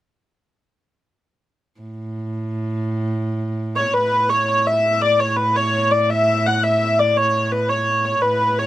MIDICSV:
0, 0, Header, 1, 3, 480
1, 0, Start_track
1, 0, Key_signature, 3, "major"
1, 0, Tempo, 356930
1, 2422, Time_signature, 6, 3, 24, 8
1, 11654, End_track
2, 0, Start_track
2, 0, Title_t, "Hurdy-gurdy"
2, 0, Program_c, 0, 110
2, 5063, Note_on_c, 0, 73, 70
2, 5297, Note_off_c, 0, 73, 0
2, 5297, Note_on_c, 0, 71, 88
2, 5782, Note_off_c, 0, 71, 0
2, 5782, Note_on_c, 0, 73, 78
2, 6029, Note_off_c, 0, 73, 0
2, 6029, Note_on_c, 0, 73, 78
2, 6276, Note_off_c, 0, 73, 0
2, 6276, Note_on_c, 0, 76, 83
2, 6745, Note_on_c, 0, 74, 95
2, 6750, Note_off_c, 0, 76, 0
2, 6991, Note_off_c, 0, 74, 0
2, 6991, Note_on_c, 0, 73, 82
2, 7214, Note_off_c, 0, 73, 0
2, 7214, Note_on_c, 0, 71, 84
2, 7477, Note_off_c, 0, 71, 0
2, 7477, Note_on_c, 0, 73, 82
2, 7952, Note_off_c, 0, 73, 0
2, 7952, Note_on_c, 0, 74, 82
2, 8201, Note_off_c, 0, 74, 0
2, 8201, Note_on_c, 0, 76, 94
2, 8693, Note_off_c, 0, 76, 0
2, 8693, Note_on_c, 0, 78, 89
2, 8924, Note_off_c, 0, 78, 0
2, 8924, Note_on_c, 0, 76, 93
2, 9400, Note_off_c, 0, 76, 0
2, 9400, Note_on_c, 0, 74, 82
2, 9642, Note_off_c, 0, 74, 0
2, 9642, Note_on_c, 0, 73, 88
2, 10111, Note_off_c, 0, 73, 0
2, 10111, Note_on_c, 0, 71, 77
2, 10339, Note_on_c, 0, 73, 72
2, 10348, Note_off_c, 0, 71, 0
2, 10821, Note_off_c, 0, 73, 0
2, 10821, Note_on_c, 0, 73, 79
2, 11051, Note_off_c, 0, 73, 0
2, 11051, Note_on_c, 0, 71, 84
2, 11555, Note_off_c, 0, 71, 0
2, 11555, Note_on_c, 0, 73, 79
2, 11654, Note_off_c, 0, 73, 0
2, 11654, End_track
3, 0, Start_track
3, 0, Title_t, "Viola da gamba"
3, 0, Program_c, 1, 42
3, 2425, Note_on_c, 1, 45, 57
3, 5289, Note_off_c, 1, 45, 0
3, 5297, Note_on_c, 1, 45, 60
3, 11042, Note_off_c, 1, 45, 0
3, 11050, Note_on_c, 1, 45, 59
3, 11654, Note_off_c, 1, 45, 0
3, 11654, End_track
0, 0, End_of_file